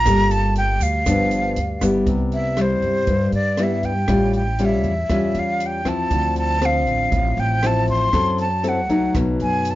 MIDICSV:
0, 0, Header, 1, 5, 480
1, 0, Start_track
1, 0, Key_signature, 0, "major"
1, 0, Tempo, 505051
1, 60, Time_signature, 4, 2, 24, 8
1, 9267, End_track
2, 0, Start_track
2, 0, Title_t, "Flute"
2, 0, Program_c, 0, 73
2, 0, Note_on_c, 0, 82, 107
2, 299, Note_on_c, 0, 81, 96
2, 313, Note_off_c, 0, 82, 0
2, 538, Note_off_c, 0, 81, 0
2, 547, Note_on_c, 0, 79, 94
2, 786, Note_on_c, 0, 77, 87
2, 800, Note_off_c, 0, 79, 0
2, 1739, Note_off_c, 0, 77, 0
2, 2223, Note_on_c, 0, 76, 87
2, 2484, Note_on_c, 0, 72, 79
2, 2499, Note_off_c, 0, 76, 0
2, 3173, Note_off_c, 0, 72, 0
2, 3179, Note_on_c, 0, 74, 80
2, 3451, Note_on_c, 0, 76, 76
2, 3465, Note_off_c, 0, 74, 0
2, 3660, Note_on_c, 0, 79, 79
2, 3675, Note_off_c, 0, 76, 0
2, 4135, Note_off_c, 0, 79, 0
2, 4141, Note_on_c, 0, 79, 80
2, 4420, Note_on_c, 0, 76, 71
2, 4434, Note_off_c, 0, 79, 0
2, 5124, Note_on_c, 0, 77, 80
2, 5138, Note_off_c, 0, 76, 0
2, 5380, Note_on_c, 0, 79, 68
2, 5394, Note_off_c, 0, 77, 0
2, 5595, Note_on_c, 0, 81, 80
2, 5610, Note_off_c, 0, 79, 0
2, 6066, Note_off_c, 0, 81, 0
2, 6071, Note_on_c, 0, 81, 91
2, 6324, Note_on_c, 0, 77, 80
2, 6338, Note_off_c, 0, 81, 0
2, 7030, Note_on_c, 0, 79, 85
2, 7045, Note_off_c, 0, 77, 0
2, 7287, Note_on_c, 0, 81, 80
2, 7301, Note_off_c, 0, 79, 0
2, 7498, Note_off_c, 0, 81, 0
2, 7504, Note_on_c, 0, 84, 115
2, 7988, Note_off_c, 0, 84, 0
2, 7994, Note_on_c, 0, 81, 84
2, 8255, Note_on_c, 0, 78, 70
2, 8269, Note_off_c, 0, 81, 0
2, 8693, Note_off_c, 0, 78, 0
2, 8954, Note_on_c, 0, 80, 88
2, 9223, Note_on_c, 0, 81, 80
2, 9237, Note_off_c, 0, 80, 0
2, 9267, Note_off_c, 0, 81, 0
2, 9267, End_track
3, 0, Start_track
3, 0, Title_t, "Nylon-string guitar"
3, 0, Program_c, 1, 24
3, 55, Note_on_c, 1, 58, 49
3, 60, Note_on_c, 1, 55, 54
3, 63, Note_on_c, 1, 65, 42
3, 68, Note_on_c, 1, 69, 52
3, 701, Note_off_c, 1, 58, 0
3, 703, Note_off_c, 1, 65, 0
3, 705, Note_off_c, 1, 69, 0
3, 994, Note_off_c, 1, 55, 0
3, 1010, Note_on_c, 1, 43, 57
3, 1014, Note_on_c, 1, 53, 55
3, 1016, Note_on_c, 1, 59, 55
3, 1020, Note_on_c, 1, 62, 53
3, 1490, Note_off_c, 1, 53, 0
3, 1493, Note_off_c, 1, 59, 0
3, 1493, Note_off_c, 1, 62, 0
3, 1727, Note_on_c, 1, 55, 58
3, 1733, Note_on_c, 1, 59, 50
3, 1738, Note_on_c, 1, 64, 63
3, 1947, Note_off_c, 1, 43, 0
3, 1976, Note_on_c, 1, 48, 50
3, 2412, Note_off_c, 1, 55, 0
3, 2413, Note_off_c, 1, 59, 0
3, 2417, Note_off_c, 1, 64, 0
3, 2442, Note_on_c, 1, 55, 60
3, 2448, Note_on_c, 1, 64, 54
3, 2909, Note_off_c, 1, 48, 0
3, 2923, Note_on_c, 1, 43, 53
3, 3092, Note_off_c, 1, 55, 0
3, 3095, Note_off_c, 1, 64, 0
3, 3404, Note_on_c, 1, 55, 56
3, 3411, Note_on_c, 1, 59, 50
3, 3415, Note_on_c, 1, 64, 65
3, 3717, Note_off_c, 1, 55, 0
3, 3721, Note_off_c, 1, 59, 0
3, 3722, Note_off_c, 1, 64, 0
3, 3863, Note_off_c, 1, 43, 0
3, 3881, Note_on_c, 1, 45, 47
3, 3884, Note_on_c, 1, 55, 55
3, 3887, Note_on_c, 1, 61, 47
3, 3890, Note_on_c, 1, 65, 61
3, 4196, Note_off_c, 1, 55, 0
3, 4199, Note_off_c, 1, 61, 0
3, 4199, Note_off_c, 1, 65, 0
3, 4366, Note_on_c, 1, 55, 57
3, 4372, Note_on_c, 1, 61, 54
3, 4375, Note_on_c, 1, 65, 65
3, 4679, Note_off_c, 1, 55, 0
3, 4680, Note_off_c, 1, 61, 0
3, 4681, Note_off_c, 1, 65, 0
3, 4823, Note_off_c, 1, 45, 0
3, 4842, Note_on_c, 1, 55, 53
3, 4848, Note_on_c, 1, 61, 56
3, 4851, Note_on_c, 1, 65, 56
3, 5530, Note_off_c, 1, 55, 0
3, 5532, Note_off_c, 1, 61, 0
3, 5534, Note_off_c, 1, 65, 0
3, 5557, Note_on_c, 1, 53, 59
3, 5563, Note_on_c, 1, 60, 63
3, 5569, Note_on_c, 1, 64, 62
3, 5804, Note_on_c, 1, 50, 50
3, 6248, Note_off_c, 1, 53, 0
3, 6249, Note_off_c, 1, 60, 0
3, 6254, Note_off_c, 1, 64, 0
3, 6281, Note_on_c, 1, 53, 52
3, 6286, Note_on_c, 1, 60, 61
3, 6746, Note_off_c, 1, 50, 0
3, 6770, Note_on_c, 1, 45, 58
3, 7211, Note_off_c, 1, 53, 0
3, 7213, Note_off_c, 1, 60, 0
3, 7254, Note_on_c, 1, 53, 54
3, 7257, Note_on_c, 1, 60, 50
3, 7260, Note_on_c, 1, 64, 62
3, 7698, Note_off_c, 1, 53, 0
3, 7698, Note_off_c, 1, 60, 0
3, 7700, Note_off_c, 1, 64, 0
3, 7710, Note_off_c, 1, 45, 0
3, 7725, Note_on_c, 1, 54, 50
3, 7727, Note_on_c, 1, 60, 50
3, 7731, Note_on_c, 1, 64, 46
3, 7731, Note_on_c, 1, 69, 58
3, 8042, Note_off_c, 1, 60, 0
3, 8043, Note_off_c, 1, 64, 0
3, 8044, Note_off_c, 1, 69, 0
3, 8204, Note_on_c, 1, 60, 58
3, 8210, Note_on_c, 1, 64, 53
3, 8214, Note_on_c, 1, 69, 58
3, 8352, Note_off_c, 1, 60, 0
3, 8356, Note_off_c, 1, 64, 0
3, 8357, Note_off_c, 1, 69, 0
3, 8441, Note_off_c, 1, 54, 0
3, 8452, Note_on_c, 1, 54, 62
3, 8457, Note_on_c, 1, 57, 66
3, 8459, Note_on_c, 1, 63, 71
3, 8701, Note_on_c, 1, 47, 57
3, 9267, Note_off_c, 1, 47, 0
3, 9267, Note_off_c, 1, 54, 0
3, 9267, Note_off_c, 1, 57, 0
3, 9267, Note_off_c, 1, 63, 0
3, 9267, End_track
4, 0, Start_track
4, 0, Title_t, "Upright bass"
4, 0, Program_c, 2, 32
4, 52, Note_on_c, 2, 31, 114
4, 736, Note_off_c, 2, 31, 0
4, 764, Note_on_c, 2, 38, 97
4, 993, Note_off_c, 2, 38, 0
4, 1006, Note_on_c, 2, 31, 93
4, 1456, Note_off_c, 2, 31, 0
4, 1490, Note_on_c, 2, 38, 77
4, 1715, Note_off_c, 2, 38, 0
4, 1723, Note_on_c, 2, 31, 68
4, 1951, Note_off_c, 2, 31, 0
4, 1962, Note_on_c, 2, 36, 89
4, 2680, Note_off_c, 2, 36, 0
4, 2680, Note_on_c, 2, 43, 77
4, 2909, Note_off_c, 2, 43, 0
4, 2921, Note_on_c, 2, 43, 96
4, 3149, Note_off_c, 2, 43, 0
4, 3158, Note_on_c, 2, 43, 75
4, 3847, Note_off_c, 2, 43, 0
4, 3880, Note_on_c, 2, 33, 83
4, 4600, Note_off_c, 2, 33, 0
4, 4600, Note_on_c, 2, 40, 84
4, 4829, Note_off_c, 2, 40, 0
4, 4843, Note_on_c, 2, 40, 91
4, 5071, Note_off_c, 2, 40, 0
4, 5081, Note_on_c, 2, 40, 90
4, 5769, Note_off_c, 2, 40, 0
4, 5810, Note_on_c, 2, 38, 91
4, 6530, Note_off_c, 2, 38, 0
4, 6530, Note_on_c, 2, 33, 84
4, 6756, Note_off_c, 2, 33, 0
4, 6763, Note_on_c, 2, 33, 91
4, 6992, Note_off_c, 2, 33, 0
4, 7005, Note_on_c, 2, 33, 96
4, 7694, Note_off_c, 2, 33, 0
4, 7728, Note_on_c, 2, 42, 94
4, 8453, Note_off_c, 2, 42, 0
4, 8453, Note_on_c, 2, 36, 82
4, 8679, Note_off_c, 2, 36, 0
4, 8692, Note_on_c, 2, 35, 100
4, 8919, Note_off_c, 2, 35, 0
4, 8938, Note_on_c, 2, 42, 82
4, 9267, Note_off_c, 2, 42, 0
4, 9267, End_track
5, 0, Start_track
5, 0, Title_t, "Drums"
5, 54, Note_on_c, 9, 36, 64
5, 55, Note_on_c, 9, 37, 66
5, 55, Note_on_c, 9, 42, 65
5, 58, Note_on_c, 9, 82, 61
5, 149, Note_off_c, 9, 36, 0
5, 150, Note_off_c, 9, 37, 0
5, 150, Note_off_c, 9, 42, 0
5, 153, Note_off_c, 9, 82, 0
5, 292, Note_on_c, 9, 42, 43
5, 298, Note_on_c, 9, 82, 23
5, 387, Note_off_c, 9, 42, 0
5, 393, Note_off_c, 9, 82, 0
5, 528, Note_on_c, 9, 42, 39
5, 623, Note_off_c, 9, 42, 0
5, 768, Note_on_c, 9, 82, 65
5, 769, Note_on_c, 9, 36, 23
5, 769, Note_on_c, 9, 42, 40
5, 863, Note_off_c, 9, 82, 0
5, 864, Note_off_c, 9, 36, 0
5, 864, Note_off_c, 9, 42, 0
5, 1008, Note_on_c, 9, 36, 66
5, 1008, Note_on_c, 9, 82, 70
5, 1010, Note_on_c, 9, 37, 65
5, 1010, Note_on_c, 9, 42, 60
5, 1103, Note_off_c, 9, 36, 0
5, 1104, Note_off_c, 9, 82, 0
5, 1105, Note_off_c, 9, 37, 0
5, 1105, Note_off_c, 9, 42, 0
5, 1245, Note_on_c, 9, 42, 44
5, 1251, Note_on_c, 9, 82, 24
5, 1340, Note_off_c, 9, 42, 0
5, 1347, Note_off_c, 9, 82, 0
5, 1486, Note_on_c, 9, 42, 44
5, 1581, Note_off_c, 9, 42, 0
5, 1724, Note_on_c, 9, 37, 59
5, 1724, Note_on_c, 9, 42, 48
5, 1725, Note_on_c, 9, 36, 24
5, 1729, Note_on_c, 9, 82, 59
5, 1819, Note_off_c, 9, 37, 0
5, 1819, Note_off_c, 9, 42, 0
5, 1820, Note_off_c, 9, 36, 0
5, 1824, Note_off_c, 9, 82, 0
5, 1963, Note_on_c, 9, 42, 47
5, 1964, Note_on_c, 9, 36, 63
5, 2058, Note_off_c, 9, 42, 0
5, 2059, Note_off_c, 9, 36, 0
5, 2204, Note_on_c, 9, 42, 27
5, 2299, Note_off_c, 9, 42, 0
5, 2441, Note_on_c, 9, 37, 58
5, 2441, Note_on_c, 9, 42, 41
5, 2536, Note_off_c, 9, 37, 0
5, 2536, Note_off_c, 9, 42, 0
5, 2682, Note_on_c, 9, 36, 22
5, 2683, Note_on_c, 9, 42, 24
5, 2777, Note_off_c, 9, 36, 0
5, 2778, Note_off_c, 9, 42, 0
5, 2918, Note_on_c, 9, 42, 40
5, 2921, Note_on_c, 9, 36, 58
5, 3013, Note_off_c, 9, 42, 0
5, 3016, Note_off_c, 9, 36, 0
5, 3158, Note_on_c, 9, 42, 25
5, 3253, Note_off_c, 9, 42, 0
5, 3396, Note_on_c, 9, 37, 60
5, 3396, Note_on_c, 9, 42, 43
5, 3491, Note_off_c, 9, 37, 0
5, 3491, Note_off_c, 9, 42, 0
5, 3641, Note_on_c, 9, 42, 27
5, 3642, Note_on_c, 9, 36, 23
5, 3736, Note_off_c, 9, 42, 0
5, 3737, Note_off_c, 9, 36, 0
5, 3876, Note_on_c, 9, 37, 72
5, 3876, Note_on_c, 9, 42, 44
5, 3881, Note_on_c, 9, 36, 68
5, 3971, Note_off_c, 9, 37, 0
5, 3971, Note_off_c, 9, 42, 0
5, 3976, Note_off_c, 9, 36, 0
5, 4118, Note_on_c, 9, 42, 27
5, 4213, Note_off_c, 9, 42, 0
5, 4360, Note_on_c, 9, 42, 43
5, 4455, Note_off_c, 9, 42, 0
5, 4597, Note_on_c, 9, 42, 29
5, 4602, Note_on_c, 9, 36, 24
5, 4692, Note_off_c, 9, 42, 0
5, 4697, Note_off_c, 9, 36, 0
5, 4842, Note_on_c, 9, 37, 58
5, 4842, Note_on_c, 9, 42, 43
5, 4843, Note_on_c, 9, 36, 54
5, 4937, Note_off_c, 9, 37, 0
5, 4937, Note_off_c, 9, 42, 0
5, 4938, Note_off_c, 9, 36, 0
5, 5082, Note_on_c, 9, 42, 30
5, 5177, Note_off_c, 9, 42, 0
5, 5324, Note_on_c, 9, 42, 47
5, 5419, Note_off_c, 9, 42, 0
5, 5564, Note_on_c, 9, 36, 25
5, 5564, Note_on_c, 9, 37, 53
5, 5564, Note_on_c, 9, 42, 29
5, 5659, Note_off_c, 9, 36, 0
5, 5659, Note_off_c, 9, 37, 0
5, 5659, Note_off_c, 9, 42, 0
5, 5804, Note_on_c, 9, 42, 45
5, 5806, Note_on_c, 9, 36, 67
5, 5899, Note_off_c, 9, 42, 0
5, 5901, Note_off_c, 9, 36, 0
5, 6044, Note_on_c, 9, 42, 31
5, 6139, Note_off_c, 9, 42, 0
5, 6289, Note_on_c, 9, 37, 54
5, 6289, Note_on_c, 9, 42, 48
5, 6384, Note_off_c, 9, 37, 0
5, 6384, Note_off_c, 9, 42, 0
5, 6527, Note_on_c, 9, 36, 21
5, 6528, Note_on_c, 9, 42, 27
5, 6622, Note_off_c, 9, 36, 0
5, 6623, Note_off_c, 9, 42, 0
5, 6767, Note_on_c, 9, 36, 65
5, 6767, Note_on_c, 9, 42, 43
5, 6862, Note_off_c, 9, 36, 0
5, 6862, Note_off_c, 9, 42, 0
5, 7010, Note_on_c, 9, 42, 24
5, 7105, Note_off_c, 9, 42, 0
5, 7249, Note_on_c, 9, 37, 61
5, 7249, Note_on_c, 9, 42, 44
5, 7344, Note_off_c, 9, 37, 0
5, 7344, Note_off_c, 9, 42, 0
5, 7486, Note_on_c, 9, 42, 23
5, 7487, Note_on_c, 9, 36, 22
5, 7581, Note_off_c, 9, 42, 0
5, 7582, Note_off_c, 9, 36, 0
5, 7727, Note_on_c, 9, 37, 66
5, 7727, Note_on_c, 9, 42, 49
5, 7729, Note_on_c, 9, 36, 66
5, 7822, Note_off_c, 9, 37, 0
5, 7822, Note_off_c, 9, 42, 0
5, 7824, Note_off_c, 9, 36, 0
5, 7967, Note_on_c, 9, 42, 28
5, 8062, Note_off_c, 9, 42, 0
5, 8210, Note_on_c, 9, 42, 42
5, 8305, Note_off_c, 9, 42, 0
5, 8452, Note_on_c, 9, 36, 25
5, 8455, Note_on_c, 9, 42, 25
5, 8547, Note_off_c, 9, 36, 0
5, 8550, Note_off_c, 9, 42, 0
5, 8692, Note_on_c, 9, 36, 61
5, 8693, Note_on_c, 9, 37, 53
5, 8693, Note_on_c, 9, 42, 46
5, 8787, Note_off_c, 9, 36, 0
5, 8789, Note_off_c, 9, 37, 0
5, 8789, Note_off_c, 9, 42, 0
5, 8933, Note_on_c, 9, 42, 23
5, 9028, Note_off_c, 9, 42, 0
5, 9171, Note_on_c, 9, 42, 48
5, 9266, Note_off_c, 9, 42, 0
5, 9267, End_track
0, 0, End_of_file